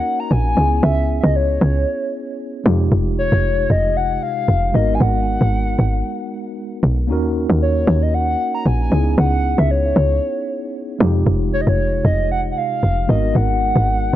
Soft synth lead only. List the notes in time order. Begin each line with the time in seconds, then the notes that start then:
Already playing: F#5
0.20 A#5
0.31 G#5
0.84 E5
1.20 D#5 E5
1.36 C#5
3.18 C#5
3.71 D#5
3.97 F#5
4.23 F5
4.75 D#5
4.95 G#5
5.01 F#5
7.62 C#5
8.02 D#5
8.14 F#5
8.55 A#5
8.66 G#5
9.19 F#5
9.59 E5
9.71 C#5
11.53 C#5
11.61 D#5
11.69 C#5
12.06 D#5
12.32 F#5
12.51 F#5
12.58 F5
13.10 D#5
13.36 F#5